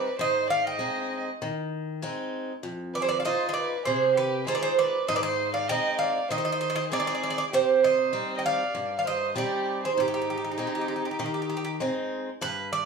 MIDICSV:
0, 0, Header, 1, 4, 480
1, 0, Start_track
1, 0, Tempo, 610376
1, 150, Time_signature, 4, 2, 24, 8
1, 10108, End_track
2, 0, Start_track
2, 0, Title_t, "Bouzouki"
2, 0, Program_c, 0, 25
2, 0, Note_on_c, 0, 74, 84
2, 134, Note_off_c, 0, 74, 0
2, 165, Note_on_c, 0, 75, 103
2, 381, Note_off_c, 0, 75, 0
2, 396, Note_on_c, 0, 77, 94
2, 505, Note_off_c, 0, 77, 0
2, 527, Note_on_c, 0, 79, 74
2, 968, Note_off_c, 0, 79, 0
2, 2321, Note_on_c, 0, 74, 82
2, 2369, Note_off_c, 0, 74, 0
2, 2374, Note_on_c, 0, 72, 71
2, 2427, Note_off_c, 0, 72, 0
2, 2427, Note_on_c, 0, 74, 83
2, 2512, Note_off_c, 0, 74, 0
2, 2515, Note_on_c, 0, 77, 58
2, 2555, Note_off_c, 0, 77, 0
2, 2558, Note_on_c, 0, 75, 94
2, 2729, Note_off_c, 0, 75, 0
2, 2742, Note_on_c, 0, 75, 66
2, 2777, Note_off_c, 0, 75, 0
2, 2781, Note_on_c, 0, 74, 84
2, 3011, Note_off_c, 0, 74, 0
2, 3031, Note_on_c, 0, 72, 83
2, 3279, Note_off_c, 0, 72, 0
2, 3282, Note_on_c, 0, 71, 89
2, 3503, Note_off_c, 0, 71, 0
2, 3525, Note_on_c, 0, 72, 91
2, 3576, Note_on_c, 0, 74, 83
2, 3578, Note_off_c, 0, 72, 0
2, 3630, Note_off_c, 0, 74, 0
2, 3637, Note_on_c, 0, 72, 98
2, 3765, Note_on_c, 0, 74, 92
2, 3766, Note_off_c, 0, 72, 0
2, 3996, Note_off_c, 0, 74, 0
2, 3999, Note_on_c, 0, 75, 108
2, 4050, Note_off_c, 0, 75, 0
2, 4057, Note_on_c, 0, 74, 94
2, 4109, Note_off_c, 0, 74, 0
2, 4112, Note_on_c, 0, 75, 104
2, 4343, Note_off_c, 0, 75, 0
2, 4355, Note_on_c, 0, 77, 76
2, 4468, Note_off_c, 0, 77, 0
2, 4477, Note_on_c, 0, 79, 99
2, 4702, Note_off_c, 0, 79, 0
2, 4708, Note_on_c, 0, 77, 88
2, 4961, Note_off_c, 0, 77, 0
2, 4967, Note_on_c, 0, 75, 92
2, 5007, Note_off_c, 0, 75, 0
2, 5017, Note_on_c, 0, 75, 67
2, 5062, Note_off_c, 0, 75, 0
2, 5071, Note_on_c, 0, 75, 72
2, 5120, Note_off_c, 0, 75, 0
2, 5130, Note_on_c, 0, 75, 75
2, 5187, Note_off_c, 0, 75, 0
2, 5196, Note_on_c, 0, 75, 78
2, 5258, Note_off_c, 0, 75, 0
2, 5267, Note_on_c, 0, 75, 78
2, 5304, Note_off_c, 0, 75, 0
2, 5313, Note_on_c, 0, 75, 90
2, 5376, Note_off_c, 0, 75, 0
2, 5451, Note_on_c, 0, 74, 98
2, 5493, Note_off_c, 0, 74, 0
2, 5502, Note_on_c, 0, 74, 71
2, 5553, Note_off_c, 0, 74, 0
2, 5562, Note_on_c, 0, 74, 81
2, 5611, Note_off_c, 0, 74, 0
2, 5621, Note_on_c, 0, 74, 64
2, 5675, Note_off_c, 0, 74, 0
2, 5689, Note_on_c, 0, 74, 72
2, 5735, Note_off_c, 0, 74, 0
2, 5744, Note_on_c, 0, 74, 69
2, 5796, Note_off_c, 0, 74, 0
2, 5805, Note_on_c, 0, 74, 81
2, 5857, Note_off_c, 0, 74, 0
2, 5930, Note_on_c, 0, 72, 106
2, 6149, Note_off_c, 0, 72, 0
2, 6168, Note_on_c, 0, 75, 98
2, 6560, Note_off_c, 0, 75, 0
2, 6596, Note_on_c, 0, 79, 71
2, 6646, Note_off_c, 0, 79, 0
2, 6650, Note_on_c, 0, 77, 94
2, 7058, Note_off_c, 0, 77, 0
2, 7067, Note_on_c, 0, 77, 65
2, 7122, Note_off_c, 0, 77, 0
2, 7134, Note_on_c, 0, 75, 89
2, 7351, Note_off_c, 0, 75, 0
2, 7377, Note_on_c, 0, 74, 91
2, 7739, Note_off_c, 0, 74, 0
2, 7747, Note_on_c, 0, 72, 76
2, 7846, Note_off_c, 0, 72, 0
2, 7864, Note_on_c, 0, 67, 81
2, 7908, Note_off_c, 0, 67, 0
2, 7925, Note_on_c, 0, 67, 62
2, 7964, Note_off_c, 0, 67, 0
2, 7974, Note_on_c, 0, 67, 64
2, 8022, Note_off_c, 0, 67, 0
2, 8034, Note_on_c, 0, 67, 51
2, 8081, Note_off_c, 0, 67, 0
2, 8101, Note_on_c, 0, 67, 57
2, 8145, Note_off_c, 0, 67, 0
2, 8159, Note_on_c, 0, 67, 48
2, 8203, Note_off_c, 0, 67, 0
2, 8214, Note_on_c, 0, 67, 56
2, 8260, Note_off_c, 0, 67, 0
2, 8268, Note_on_c, 0, 67, 39
2, 8317, Note_off_c, 0, 67, 0
2, 8328, Note_on_c, 0, 67, 45
2, 8376, Note_off_c, 0, 67, 0
2, 8392, Note_on_c, 0, 67, 41
2, 8438, Note_off_c, 0, 67, 0
2, 8454, Note_on_c, 0, 67, 50
2, 8494, Note_off_c, 0, 67, 0
2, 8503, Note_on_c, 0, 67, 43
2, 8548, Note_off_c, 0, 67, 0
2, 8558, Note_on_c, 0, 67, 47
2, 8610, Note_off_c, 0, 67, 0
2, 8619, Note_on_c, 0, 67, 43
2, 8670, Note_off_c, 0, 67, 0
2, 8692, Note_on_c, 0, 67, 49
2, 8729, Note_off_c, 0, 67, 0
2, 8738, Note_on_c, 0, 67, 43
2, 8788, Note_off_c, 0, 67, 0
2, 8800, Note_on_c, 0, 67, 48
2, 8843, Note_off_c, 0, 67, 0
2, 8853, Note_on_c, 0, 67, 48
2, 8905, Note_off_c, 0, 67, 0
2, 8918, Note_on_c, 0, 67, 50
2, 8968, Note_off_c, 0, 67, 0
2, 8980, Note_on_c, 0, 67, 48
2, 9028, Note_off_c, 0, 67, 0
2, 9040, Note_on_c, 0, 67, 55
2, 9087, Note_off_c, 0, 67, 0
2, 9097, Note_on_c, 0, 67, 58
2, 9146, Note_off_c, 0, 67, 0
2, 9158, Note_on_c, 0, 67, 65
2, 9206, Note_off_c, 0, 67, 0
2, 9769, Note_on_c, 0, 71, 99
2, 9984, Note_off_c, 0, 71, 0
2, 10008, Note_on_c, 0, 74, 86
2, 10108, Note_off_c, 0, 74, 0
2, 10108, End_track
3, 0, Start_track
3, 0, Title_t, "Violin"
3, 0, Program_c, 1, 40
3, 0, Note_on_c, 1, 71, 80
3, 131, Note_off_c, 1, 71, 0
3, 152, Note_on_c, 1, 72, 97
3, 374, Note_off_c, 1, 72, 0
3, 393, Note_on_c, 1, 74, 75
3, 503, Note_off_c, 1, 74, 0
3, 511, Note_on_c, 1, 75, 84
3, 960, Note_off_c, 1, 75, 0
3, 2311, Note_on_c, 1, 71, 76
3, 2364, Note_off_c, 1, 71, 0
3, 2372, Note_on_c, 1, 68, 61
3, 2423, Note_off_c, 1, 68, 0
3, 2426, Note_on_c, 1, 71, 76
3, 2496, Note_off_c, 1, 71, 0
3, 2501, Note_on_c, 1, 74, 59
3, 2552, Note_off_c, 1, 74, 0
3, 2555, Note_on_c, 1, 72, 78
3, 2727, Note_off_c, 1, 72, 0
3, 2738, Note_on_c, 1, 72, 55
3, 2790, Note_off_c, 1, 72, 0
3, 2797, Note_on_c, 1, 71, 71
3, 3020, Note_off_c, 1, 71, 0
3, 3035, Note_on_c, 1, 68, 77
3, 3259, Note_off_c, 1, 68, 0
3, 3271, Note_on_c, 1, 67, 75
3, 3497, Note_off_c, 1, 67, 0
3, 3510, Note_on_c, 1, 68, 72
3, 3565, Note_off_c, 1, 68, 0
3, 3574, Note_on_c, 1, 71, 65
3, 3621, Note_off_c, 1, 71, 0
3, 3625, Note_on_c, 1, 68, 72
3, 3747, Note_off_c, 1, 68, 0
3, 3758, Note_on_c, 1, 71, 77
3, 3981, Note_off_c, 1, 71, 0
3, 3998, Note_on_c, 1, 72, 94
3, 4049, Note_off_c, 1, 72, 0
3, 4055, Note_on_c, 1, 71, 74
3, 4106, Note_off_c, 1, 71, 0
3, 4122, Note_on_c, 1, 72, 92
3, 4348, Note_off_c, 1, 72, 0
3, 4361, Note_on_c, 1, 74, 87
3, 4472, Note_off_c, 1, 74, 0
3, 4485, Note_on_c, 1, 75, 84
3, 4706, Note_off_c, 1, 75, 0
3, 4729, Note_on_c, 1, 74, 78
3, 4948, Note_off_c, 1, 74, 0
3, 4967, Note_on_c, 1, 72, 78
3, 5413, Note_off_c, 1, 72, 0
3, 5440, Note_on_c, 1, 68, 79
3, 5889, Note_off_c, 1, 68, 0
3, 5922, Note_on_c, 1, 67, 85
3, 6145, Note_off_c, 1, 67, 0
3, 6159, Note_on_c, 1, 72, 82
3, 6555, Note_off_c, 1, 72, 0
3, 6582, Note_on_c, 1, 75, 58
3, 6635, Note_off_c, 1, 75, 0
3, 6647, Note_on_c, 1, 74, 86
3, 7039, Note_off_c, 1, 74, 0
3, 7068, Note_on_c, 1, 74, 52
3, 7118, Note_off_c, 1, 74, 0
3, 7129, Note_on_c, 1, 72, 73
3, 7348, Note_off_c, 1, 72, 0
3, 7374, Note_on_c, 1, 67, 76
3, 7702, Note_off_c, 1, 67, 0
3, 7734, Note_on_c, 1, 68, 66
3, 7839, Note_off_c, 1, 68, 0
3, 7854, Note_on_c, 1, 63, 73
3, 9251, Note_off_c, 1, 63, 0
3, 10108, End_track
4, 0, Start_track
4, 0, Title_t, "Steel-string acoustic guitar"
4, 0, Program_c, 2, 25
4, 151, Note_on_c, 2, 44, 66
4, 616, Note_off_c, 2, 44, 0
4, 620, Note_on_c, 2, 56, 44
4, 624, Note_on_c, 2, 60, 45
4, 632, Note_on_c, 2, 63, 42
4, 1009, Note_off_c, 2, 56, 0
4, 1012, Note_off_c, 2, 60, 0
4, 1013, Note_off_c, 2, 63, 0
4, 1115, Note_on_c, 2, 51, 59
4, 1580, Note_off_c, 2, 51, 0
4, 1592, Note_on_c, 2, 56, 48
4, 1595, Note_on_c, 2, 60, 47
4, 1600, Note_on_c, 2, 63, 52
4, 1977, Note_off_c, 2, 56, 0
4, 1979, Note_off_c, 2, 60, 0
4, 1981, Note_off_c, 2, 63, 0
4, 2070, Note_on_c, 2, 41, 63
4, 2538, Note_off_c, 2, 41, 0
4, 2553, Note_on_c, 2, 56, 47
4, 2559, Note_on_c, 2, 63, 33
4, 2562, Note_on_c, 2, 65, 46
4, 2939, Note_off_c, 2, 56, 0
4, 2940, Note_off_c, 2, 63, 0
4, 2944, Note_off_c, 2, 65, 0
4, 3043, Note_on_c, 2, 48, 59
4, 3506, Note_off_c, 2, 48, 0
4, 3514, Note_on_c, 2, 56, 53
4, 3517, Note_on_c, 2, 63, 41
4, 3525, Note_on_c, 2, 65, 45
4, 3900, Note_off_c, 2, 56, 0
4, 3903, Note_off_c, 2, 63, 0
4, 3905, Note_off_c, 2, 65, 0
4, 3999, Note_on_c, 2, 44, 69
4, 4465, Note_off_c, 2, 44, 0
4, 4482, Note_on_c, 2, 56, 48
4, 4488, Note_on_c, 2, 60, 34
4, 4489, Note_on_c, 2, 63, 51
4, 4866, Note_off_c, 2, 56, 0
4, 4868, Note_off_c, 2, 60, 0
4, 4870, Note_off_c, 2, 63, 0
4, 4958, Note_on_c, 2, 51, 66
4, 5425, Note_off_c, 2, 51, 0
4, 5438, Note_on_c, 2, 56, 54
4, 5443, Note_on_c, 2, 60, 50
4, 5447, Note_on_c, 2, 63, 49
4, 5824, Note_off_c, 2, 56, 0
4, 5827, Note_off_c, 2, 63, 0
4, 5828, Note_off_c, 2, 60, 0
4, 5924, Note_on_c, 2, 48, 70
4, 6388, Note_off_c, 2, 48, 0
4, 6391, Note_on_c, 2, 55, 45
4, 6395, Note_on_c, 2, 60, 42
4, 6397, Note_on_c, 2, 63, 48
4, 6780, Note_off_c, 2, 55, 0
4, 6780, Note_off_c, 2, 60, 0
4, 6782, Note_off_c, 2, 63, 0
4, 6878, Note_on_c, 2, 43, 57
4, 7344, Note_off_c, 2, 43, 0
4, 7357, Note_on_c, 2, 55, 53
4, 7363, Note_on_c, 2, 60, 47
4, 7364, Note_on_c, 2, 63, 46
4, 7742, Note_off_c, 2, 55, 0
4, 7744, Note_off_c, 2, 63, 0
4, 7745, Note_off_c, 2, 60, 0
4, 7843, Note_on_c, 2, 44, 64
4, 8306, Note_off_c, 2, 44, 0
4, 8317, Note_on_c, 2, 56, 45
4, 8321, Note_on_c, 2, 60, 38
4, 8328, Note_on_c, 2, 63, 45
4, 8700, Note_off_c, 2, 56, 0
4, 8704, Note_off_c, 2, 60, 0
4, 8705, Note_off_c, 2, 63, 0
4, 8804, Note_on_c, 2, 51, 65
4, 9264, Note_off_c, 2, 51, 0
4, 9282, Note_on_c, 2, 56, 52
4, 9287, Note_on_c, 2, 60, 39
4, 9292, Note_on_c, 2, 63, 56
4, 9662, Note_off_c, 2, 56, 0
4, 9662, Note_off_c, 2, 60, 0
4, 9667, Note_off_c, 2, 63, 0
4, 9762, Note_on_c, 2, 43, 67
4, 10108, Note_off_c, 2, 43, 0
4, 10108, End_track
0, 0, End_of_file